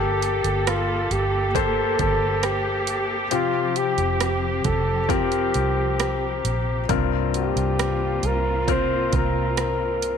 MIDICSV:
0, 0, Header, 1, 6, 480
1, 0, Start_track
1, 0, Key_signature, -1, "major"
1, 0, Tempo, 884956
1, 1798, Time_signature, 4, 2, 24, 8
1, 2280, Tempo, 894188
1, 5486, End_track
2, 0, Start_track
2, 0, Title_t, "Flugelhorn"
2, 0, Program_c, 0, 56
2, 0, Note_on_c, 0, 67, 92
2, 368, Note_on_c, 0, 65, 79
2, 376, Note_off_c, 0, 67, 0
2, 607, Note_on_c, 0, 67, 79
2, 615, Note_off_c, 0, 65, 0
2, 847, Note_on_c, 0, 69, 92
2, 855, Note_off_c, 0, 67, 0
2, 1083, Note_off_c, 0, 69, 0
2, 1091, Note_on_c, 0, 69, 86
2, 1326, Note_on_c, 0, 67, 79
2, 1334, Note_off_c, 0, 69, 0
2, 1681, Note_off_c, 0, 67, 0
2, 1806, Note_on_c, 0, 65, 91
2, 2046, Note_on_c, 0, 67, 87
2, 2054, Note_off_c, 0, 65, 0
2, 2282, Note_off_c, 0, 67, 0
2, 2288, Note_on_c, 0, 67, 70
2, 2518, Note_on_c, 0, 69, 76
2, 2526, Note_off_c, 0, 67, 0
2, 2766, Note_on_c, 0, 67, 80
2, 2774, Note_off_c, 0, 69, 0
2, 3486, Note_off_c, 0, 67, 0
2, 3973, Note_on_c, 0, 67, 81
2, 4458, Note_on_c, 0, 70, 83
2, 4466, Note_off_c, 0, 67, 0
2, 4690, Note_off_c, 0, 70, 0
2, 4696, Note_on_c, 0, 72, 94
2, 4940, Note_on_c, 0, 70, 82
2, 4948, Note_off_c, 0, 72, 0
2, 5171, Note_off_c, 0, 70, 0
2, 5175, Note_on_c, 0, 70, 76
2, 5486, Note_off_c, 0, 70, 0
2, 5486, End_track
3, 0, Start_track
3, 0, Title_t, "Grand piano"
3, 0, Program_c, 1, 0
3, 0, Control_c, 1, 64, 127
3, 0, Note_on_c, 1, 58, 57
3, 0, Note_on_c, 1, 67, 55
3, 0, Note_on_c, 1, 69, 70
3, 793, Note_off_c, 1, 58, 0
3, 795, Note_off_c, 1, 67, 0
3, 796, Note_off_c, 1, 69, 0
3, 839, Note_on_c, 1, 58, 64
3, 840, Note_on_c, 1, 67, 65
3, 843, Note_on_c, 1, 72, 75
3, 1749, Note_off_c, 1, 58, 0
3, 1749, Note_off_c, 1, 67, 0
3, 1751, Note_off_c, 1, 72, 0
3, 1796, Note_on_c, 1, 60, 59
3, 1797, Note_on_c, 1, 65, 51
3, 1798, Note_on_c, 1, 48, 49
3, 1802, Note_on_c, 1, 67, 68
3, 1805, Control_c, 1, 64, 0
3, 1896, Control_c, 1, 64, 127
3, 2496, Note_off_c, 1, 48, 0
3, 2709, Note_off_c, 1, 60, 0
3, 2709, Note_off_c, 1, 65, 0
3, 2712, Note_off_c, 1, 67, 0
3, 2754, Note_on_c, 1, 60, 74
3, 2756, Note_on_c, 1, 65, 58
3, 2760, Note_on_c, 1, 70, 75
3, 3674, Note_off_c, 1, 60, 0
3, 3675, Note_off_c, 1, 65, 0
3, 3677, Note_off_c, 1, 70, 0
3, 3722, Note_on_c, 1, 60, 64
3, 3725, Note_on_c, 1, 43, 55
3, 3726, Note_on_c, 1, 65, 57
3, 3728, Note_on_c, 1, 70, 68
3, 3731, Control_c, 1, 64, 0
3, 3830, Control_c, 1, 64, 127
3, 4423, Note_off_c, 1, 43, 0
3, 4634, Note_off_c, 1, 60, 0
3, 4636, Note_off_c, 1, 65, 0
3, 4637, Note_off_c, 1, 70, 0
3, 4684, Note_on_c, 1, 60, 68
3, 4686, Note_on_c, 1, 65, 57
3, 4689, Note_on_c, 1, 70, 78
3, 5486, Note_off_c, 1, 60, 0
3, 5486, Note_off_c, 1, 65, 0
3, 5486, Note_off_c, 1, 70, 0
3, 5486, End_track
4, 0, Start_track
4, 0, Title_t, "String section"
4, 0, Program_c, 2, 48
4, 0, Note_on_c, 2, 58, 66
4, 0, Note_on_c, 2, 67, 70
4, 0, Note_on_c, 2, 69, 63
4, 1776, Note_off_c, 2, 69, 0
4, 1778, Note_off_c, 2, 58, 0
4, 1791, Note_on_c, 2, 60, 54
4, 1792, Note_on_c, 2, 53, 69
4, 3701, Note_off_c, 2, 60, 0
4, 3701, Note_off_c, 2, 67, 0
4, 3702, Note_off_c, 2, 53, 0
4, 3726, Note_on_c, 2, 65, 72
4, 3727, Note_on_c, 2, 48, 59
4, 3727, Note_on_c, 2, 58, 53
4, 5486, Note_off_c, 2, 48, 0
4, 5486, Note_off_c, 2, 58, 0
4, 5486, Note_off_c, 2, 65, 0
4, 5486, End_track
5, 0, Start_track
5, 0, Title_t, "Fingered electric bass"
5, 0, Program_c, 3, 33
5, 0, Note_on_c, 3, 31, 97
5, 218, Note_off_c, 3, 31, 0
5, 240, Note_on_c, 3, 31, 94
5, 579, Note_off_c, 3, 31, 0
5, 601, Note_on_c, 3, 31, 84
5, 1058, Note_off_c, 3, 31, 0
5, 1082, Note_on_c, 3, 31, 92
5, 1798, Note_off_c, 3, 31, 0
5, 1798, Note_on_c, 3, 29, 100
5, 2136, Note_off_c, 3, 29, 0
5, 2158, Note_on_c, 3, 29, 92
5, 2496, Note_off_c, 3, 29, 0
5, 2518, Note_on_c, 3, 29, 77
5, 2978, Note_off_c, 3, 29, 0
5, 3004, Note_on_c, 3, 36, 78
5, 3463, Note_off_c, 3, 36, 0
5, 3484, Note_on_c, 3, 34, 79
5, 3708, Note_off_c, 3, 34, 0
5, 3723, Note_on_c, 3, 36, 97
5, 4063, Note_off_c, 3, 36, 0
5, 4082, Note_on_c, 3, 36, 91
5, 4421, Note_off_c, 3, 36, 0
5, 4442, Note_on_c, 3, 36, 83
5, 4900, Note_off_c, 3, 36, 0
5, 4923, Note_on_c, 3, 36, 90
5, 5486, Note_off_c, 3, 36, 0
5, 5486, End_track
6, 0, Start_track
6, 0, Title_t, "Drums"
6, 121, Note_on_c, 9, 42, 61
6, 176, Note_off_c, 9, 42, 0
6, 241, Note_on_c, 9, 42, 54
6, 295, Note_off_c, 9, 42, 0
6, 364, Note_on_c, 9, 42, 85
6, 365, Note_on_c, 9, 37, 112
6, 419, Note_off_c, 9, 37, 0
6, 419, Note_off_c, 9, 42, 0
6, 602, Note_on_c, 9, 42, 53
6, 657, Note_off_c, 9, 42, 0
6, 840, Note_on_c, 9, 36, 76
6, 844, Note_on_c, 9, 42, 76
6, 894, Note_off_c, 9, 36, 0
6, 898, Note_off_c, 9, 42, 0
6, 1080, Note_on_c, 9, 42, 56
6, 1082, Note_on_c, 9, 36, 65
6, 1134, Note_off_c, 9, 42, 0
6, 1136, Note_off_c, 9, 36, 0
6, 1318, Note_on_c, 9, 42, 81
6, 1320, Note_on_c, 9, 37, 89
6, 1372, Note_off_c, 9, 42, 0
6, 1374, Note_off_c, 9, 37, 0
6, 1558, Note_on_c, 9, 42, 82
6, 1612, Note_off_c, 9, 42, 0
6, 1796, Note_on_c, 9, 42, 84
6, 1850, Note_off_c, 9, 42, 0
6, 2039, Note_on_c, 9, 42, 58
6, 2093, Note_off_c, 9, 42, 0
6, 2158, Note_on_c, 9, 42, 46
6, 2213, Note_off_c, 9, 42, 0
6, 2281, Note_on_c, 9, 42, 91
6, 2282, Note_on_c, 9, 37, 94
6, 2334, Note_off_c, 9, 42, 0
6, 2335, Note_off_c, 9, 37, 0
6, 2517, Note_on_c, 9, 42, 59
6, 2519, Note_on_c, 9, 36, 78
6, 2570, Note_off_c, 9, 42, 0
6, 2573, Note_off_c, 9, 36, 0
6, 2756, Note_on_c, 9, 36, 69
6, 2760, Note_on_c, 9, 42, 69
6, 2810, Note_off_c, 9, 36, 0
6, 2814, Note_off_c, 9, 42, 0
6, 2878, Note_on_c, 9, 42, 43
6, 2932, Note_off_c, 9, 42, 0
6, 2999, Note_on_c, 9, 42, 53
6, 3053, Note_off_c, 9, 42, 0
6, 3242, Note_on_c, 9, 42, 79
6, 3244, Note_on_c, 9, 37, 93
6, 3296, Note_off_c, 9, 42, 0
6, 3298, Note_off_c, 9, 37, 0
6, 3485, Note_on_c, 9, 42, 77
6, 3539, Note_off_c, 9, 42, 0
6, 3723, Note_on_c, 9, 42, 75
6, 3724, Note_on_c, 9, 36, 103
6, 3777, Note_off_c, 9, 36, 0
6, 3777, Note_off_c, 9, 42, 0
6, 3965, Note_on_c, 9, 42, 53
6, 4019, Note_off_c, 9, 42, 0
6, 4086, Note_on_c, 9, 42, 50
6, 4140, Note_off_c, 9, 42, 0
6, 4207, Note_on_c, 9, 42, 88
6, 4208, Note_on_c, 9, 37, 97
6, 4261, Note_off_c, 9, 42, 0
6, 4262, Note_off_c, 9, 37, 0
6, 4442, Note_on_c, 9, 42, 56
6, 4495, Note_off_c, 9, 42, 0
6, 4682, Note_on_c, 9, 36, 70
6, 4683, Note_on_c, 9, 42, 71
6, 4735, Note_off_c, 9, 36, 0
6, 4737, Note_off_c, 9, 42, 0
6, 4922, Note_on_c, 9, 42, 61
6, 4924, Note_on_c, 9, 36, 75
6, 4976, Note_off_c, 9, 42, 0
6, 4978, Note_off_c, 9, 36, 0
6, 5163, Note_on_c, 9, 42, 85
6, 5165, Note_on_c, 9, 37, 88
6, 5216, Note_off_c, 9, 42, 0
6, 5218, Note_off_c, 9, 37, 0
6, 5404, Note_on_c, 9, 42, 74
6, 5458, Note_off_c, 9, 42, 0
6, 5486, End_track
0, 0, End_of_file